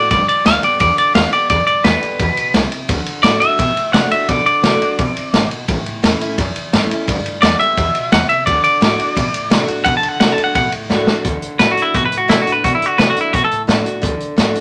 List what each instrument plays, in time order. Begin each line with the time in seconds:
Already playing: steel-string acoustic guitar D4
0.10 upright bass G1, steel-string acoustic guitar G2, clean electric guitar D5, kick, ride
0.28 clean electric guitar D5, muted upright bass stroke, ride
0.45 upright bass D2, steel-string acoustic guitar D3 G3 B3 G4, clean electric guitar F5, snare, ride
0.62 steel-string acoustic guitar B3 G4, clean electric guitar D5, muted upright bass stroke, ride
0.80 upright bass E2, steel-string acoustic guitar D3, clean electric guitar D5, kick, ride
0.97 clean electric guitar D5, muted upright bass stroke, ride
1.14 upright bass E2, steel-string acoustic guitar D3 G3 B3 G4, clean electric guitar F5, snare, ride
1.32 steel-string acoustic guitar B3 G4, clean electric guitar D5, muted upright bass stroke, ride
1.49 upright bass E2, steel-string acoustic guitar G2, clean electric guitar D5, kick, ride
1.67 clean electric guitar D5, muted upright bass stroke, ride
1.84 upright bass E2, steel-string acoustic guitar D3 G3 B3 G4, clean electric guitar B4, snare, ride
2.02 steel-string acoustic guitar B3 G4, ride
2.19 upright bass E2, steel-string acoustic guitar B2, kick, ride
2.36 muted upright bass stroke, ride
2.54 upright bass C2, steel-string acoustic guitar C3, snare, ride
2.71 muted upright bass stroke, ride
2.88 upright bass D2, steel-string acoustic guitar D3, kick, ride
3.06 muted upright bass stroke, ride
3.23 upright bass A2, steel-string acoustic guitar D3 A3 D4 F#4, clean electric guitar D5, snare, ride
3.40 steel-string acoustic guitar D4 F#4, clean electric guitar E5, muted upright bass stroke, ride
3.58 steel-string acoustic guitar A2, upright bass B2, kick, ride
3.77 ride
3.93 upright bass C3, steel-string acoustic guitar D3 A3 D4 F#4, clean electric guitar F#5, snare, ride
4.11 steel-string acoustic guitar D4 F#4, clean electric guitar E5, muted upright bass stroke, ride
4.28 upright bass B2, steel-string acoustic guitar D3, clean electric guitar D5, kick, ride
4.46 clean electric guitar D5, muted upright bass stroke, ride
4.63 upright bass C3, steel-string acoustic guitar D3 A3 D4 F#4, snare, ride
4.81 steel-string acoustic guitar D4 F#4, muted upright bass stroke, ride
4.99 upright bass B2, steel-string acoustic guitar C3, kick, ride
5.16 muted upright bass stroke, ride
5.33 upright bass G#1, steel-string acoustic guitar B2, snare, ride
5.51 ride
5.68 upright bass A1, steel-string acoustic guitar A2, kick, ride
5.86 muted upright bass stroke, ride
6.02 upright bass E2, steel-string acoustic guitar E3 A3 C#4 E4, snare, ride
6.20 steel-string acoustic guitar C#4 E4, muted upright bass stroke, ride
6.38 steel-string acoustic guitar E2, upright bass F#2, kick, ride
6.56 muted upright bass stroke, ride
6.72 upright bass G2, steel-string acoustic guitar E3 A3 C#4 E4, snare, ride
6.90 steel-string acoustic guitar C#4 E4, muted upright bass stroke, ride
7.07 upright bass G1, steel-string acoustic guitar G2, kick, ride
7.25 muted upright bass stroke, ride
7.41 upright bass E2, steel-string acoustic guitar D3 G3 B3 G4, clean electric guitar D5, snare, ride
7.59 steel-string acoustic guitar B3 G4, clean electric guitar E5, ride
7.77 upright bass E2, steel-string acoustic guitar B2, kick, ride
7.95 ride
8.12 upright bass E2, steel-string acoustic guitar C3, clean electric guitar F#5, snare, ride
8.29 clean electric guitar E5, muted upright bass stroke, ride
8.46 upright bass D2, steel-string acoustic guitar D3, clean electric guitar D5, kick, ride
8.64 clean electric guitar D5, muted upright bass stroke, ride
8.81 upright bass A2, steel-string acoustic guitar D3 A3 D4 F#4, snare, ride
8.98 steel-string acoustic guitar D4 F#4, ride
9.16 steel-string acoustic guitar A2, upright bass B2, kick, ride
9.34 muted upright bass stroke, ride
9.50 upright bass C3, steel-string acoustic guitar D3 A3 D4 F#4, snare, ride
9.67 steel-string acoustic guitar D4 F#4, muted upright bass stroke, ride
9.85 upright bass B2, steel-string acoustic guitar D3, clean electric guitar F#5, kick, ride
9.97 clean electric guitar A5
10.03 muted upright bass stroke, ride
10.08 clean electric guitar F#5
10.20 upright bass C3, steel-string acoustic guitar D3 A3 D4 F#4, clean electric guitar F#5, snare, ride
10.32 clean electric guitar A5
10.38 steel-string acoustic guitar D4 F#4, muted upright bass stroke, ride
10.44 clean electric guitar F#5
10.55 steel-string acoustic guitar A2, upright bass B2, clean electric guitar F#5, kick, ride
10.72 muted upright bass stroke, ride
10.89 upright bass A2, steel-string acoustic guitar D3 A3 D4 F#4, snare
11.06 steel-string acoustic guitar D4 F#4, muted upright bass stroke, snare
11.24 upright bass D2, steel-string acoustic guitar D3, kick, closed hi-hat
11.42 muted upright bass stroke, closed hi-hat
11.59 upright bass A2, steel-string acoustic guitar D3 A3 D4 F#4, clean electric guitar B4, snare, closed hi-hat
11.71 clean electric guitar F#4
11.77 steel-string acoustic guitar D4 F#4, muted upright bass stroke, closed hi-hat
11.82 clean electric guitar E4
11.94 steel-string acoustic guitar A2, upright bass B2, clean electric guitar F#4, kick, closed hi-hat
12.05 clean electric guitar B4
12.12 muted upright bass stroke, closed hi-hat
12.18 clean electric guitar F#4
12.28 upright bass C3, steel-string acoustic guitar D3 A3 D4 F#4, clean electric guitar E4, snare, closed hi-hat
12.42 clean electric guitar F#4
12.46 steel-string acoustic guitar D4 F#4, muted upright bass stroke, closed hi-hat
12.52 clean electric guitar B4
12.64 upright bass B2, steel-string acoustic guitar D3, clean electric guitar F#4, kick, closed hi-hat
12.75 clean electric guitar E4
12.81 muted upright bass stroke, closed hi-hat
12.86 clean electric guitar F#4
12.98 upright bass C3, steel-string acoustic guitar D3 A3 D4 F#4, clean electric guitar B4, snare, closed hi-hat
13.10 clean electric guitar F#4
13.15 steel-string acoustic guitar D4 F#4, muted upright bass stroke, closed hi-hat
13.21 clean electric guitar E4
13.33 steel-string acoustic guitar A2, upright bass B2, clean electric guitar F#4, kick, closed hi-hat
13.44 clean electric guitar A4
13.50 muted upright bass stroke, closed hi-hat
13.67 upright bass A2, steel-string acoustic guitar D3 A3 D4 F#4, snare, closed hi-hat
13.85 steel-string acoustic guitar D4 F#4, closed hi-hat
14.02 upright bass D2, steel-string acoustic guitar D3, kick, closed hi-hat
14.20 muted upright bass stroke, closed hi-hat
14.36 upright bass A2, steel-string acoustic guitar D3 A3 D4 F#4, snare, closed hi-hat
14.54 steel-string acoustic guitar D4 F#4, muted upright bass stroke, closed hi-hat